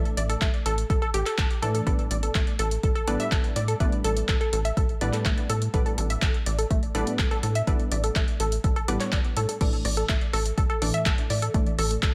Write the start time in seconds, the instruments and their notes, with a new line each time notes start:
Already playing: synth pluck A2 E3 A3 D4 A4 D5
0.05 closed hi-hat
0.17 analog synth bass A1, synth pluck D5, closed hi-hat
0.29 synth pluck A4, closed hi-hat
0.41 analog synth bass A1, synth pluck A3, kick, clap, closed hi-hat
0.54 closed hi-hat
0.66 analog synth bass A1, synth pluck A4, closed hi-hat
0.78 closed hi-hat
0.90 analog synth bass A1, synth pluck A4, kick, closed hi-hat
1.02 synth pluck A4, closed hi-hat
1.14 analog synth bass A1, synth pluck G4, closed hi-hat
1.26 synth pluck A4, clap, closed hi-hat
1.38 analog synth bass A1, synth pluck A5, kick, clap, closed hi-hat
1.50 closed hi-hat
1.62 analog synth bass A2, synth pluck E3 A3 D4 A4 D5, closed hi-hat
1.75 synth pluck A4, closed hi-hat
1.87 analog synth bass A1, synth pluck A2 G3 B3 D4 A4 B4 D5, kick, closed hi-hat
1.99 closed hi-hat
2.11 analog synth bass A1, synth pluck D5, closed hi-hat
2.23 synth pluck A4, closed hi-hat
2.35 analog synth bass A1, synth pluck A3, kick, clap, closed hi-hat
2.47 closed hi-hat
2.59 analog synth bass A1, synth pluck A4, closed hi-hat
2.71 closed hi-hat
2.83 analog synth bass A1, synth pluck A4, kick, closed hi-hat
2.95 synth pluck A4, closed hi-hat
3.07 analog synth bass A1, synth pluck A2 G3 B3 D4 A4 B4 D5, closed hi-hat
3.20 synth pluck E5, closed hi-hat
3.32 analog synth bass A1, synth pluck A4, kick, clap, closed hi-hat
3.44 closed hi-hat
3.56 analog synth bass A2, synth pluck D5, closed hi-hat
3.68 synth pluck A4, closed hi-hat
3.80 analog synth bass A1, synth pluck A2 G3 A3 B3 D4 B4 D5, kick, closed hi-hat
3.92 closed hi-hat
4.04 analog synth bass A1, synth pluck A4, closed hi-hat
4.17 closed hi-hat
4.28 analog synth bass A1, synth pluck A4, kick, clap, closed hi-hat
4.41 synth pluck A4, closed hi-hat
4.53 analog synth bass A1, synth pluck A4, closed hi-hat
4.65 synth pluck E5, closed hi-hat
4.77 analog synth bass A1, synth pluck A4, kick, closed hi-hat
4.89 closed hi-hat
5.01 analog synth bass A1, synth pluck A2 G3 B3 D4 B4 D5, closed hi-hat
5.13 synth pluck A4, clap, closed hi-hat
5.25 analog synth bass A1, synth pluck A3, kick, clap, closed hi-hat
5.38 closed hi-hat
5.50 analog synth bass A2, synth pluck A4, closed hi-hat
5.62 closed hi-hat
5.74 analog synth bass A1, synth pluck A2 G3 B3 D4 A4 B4 D5, kick, closed hi-hat
5.86 synth pluck A4, closed hi-hat
5.98 analog synth bass A1, synth pluck A4, closed hi-hat
6.10 synth pluck E5, closed hi-hat
6.22 analog synth bass A1, synth pluck A4, kick, clap, closed hi-hat
6.34 closed hi-hat
6.46 analog synth bass A1, synth pluck D5, closed hi-hat
6.59 synth pluck A4, closed hi-hat
6.71 analog synth bass A1, synth pluck A3, kick, closed hi-hat
6.83 closed hi-hat
6.95 analog synth bass A1, synth pluck A2 G3 B3 D4 A4 B4 D5, closed hi-hat
7.07 closed hi-hat
7.19 analog synth bass A1, synth pluck A4, kick, clap, closed hi-hat
7.31 synth pluck A4, closed hi-hat
7.43 analog synth bass A2, synth pluck A4, closed hi-hat
7.55 synth pluck E5, closed hi-hat
7.67 analog synth bass A1, synth pluck A2 G3 B3 D4 A4 B4 D5, kick, closed hi-hat
7.80 closed hi-hat
7.91 analog synth bass A1, synth pluck D5, closed hi-hat
8.04 synth pluck A4, closed hi-hat
8.16 analog synth bass A1, synth pluck A3, kick, clap, closed hi-hat
8.28 closed hi-hat
8.40 analog synth bass A1, synth pluck A4, closed hi-hat
8.52 closed hi-hat
8.64 analog synth bass A1, synth pluck A4, kick, closed hi-hat
8.76 synth pluck A4, closed hi-hat
8.88 analog synth bass A1, synth pluck A2 G3 B3 D4 G4 B4 D5, closed hi-hat
9.00 synth pluck C#5, clap, closed hi-hat
9.12 analog synth bass A1, synth pluck D5, kick, clap, closed hi-hat
9.25 closed hi-hat
9.37 analog synth bass A2, synth pluck A4, closed hi-hat
9.49 synth pluck A4, closed hi-hat
9.61 analog synth bass A1, synth pluck A2 E3 A3 D4 A4 D5, kick, closed hi-hat, crash
9.73 closed hi-hat
9.85 analog synth bass A1, synth pluck D5, cross-stick, open hi-hat
9.97 synth pluck A4, closed hi-hat
10.09 analog synth bass A1, synth pluck A3, kick, clap, closed hi-hat
10.21 closed hi-hat
10.33 analog synth bass A1, synth pluck A4, cross-stick, open hi-hat
10.46 closed hi-hat
10.58 analog synth bass A1, synth pluck A4, kick, closed hi-hat
10.70 synth pluck A4, closed hi-hat
10.82 analog synth bass A1, synth pluck A2 E3 A3 D4 A4 D5, open hi-hat
10.94 synth pluck E5, closed hi-hat
11.06 analog synth bass A1, synth pluck A4, kick, clap, closed hi-hat
11.18 closed hi-hat
11.30 analog synth bass A2, synth pluck D5, open hi-hat
11.42 synth pluck A4, closed hi-hat
11.54 analog synth bass A1, synth pluck A2 E3 A3 D4 A4 D5, kick, closed hi-hat
11.67 closed hi-hat
11.78 analog synth bass A1, synth pluck A4, cross-stick, open hi-hat
11.91 closed hi-hat
12.03 analog synth bass A1, synth pluck A4, kick, clap, closed hi-hat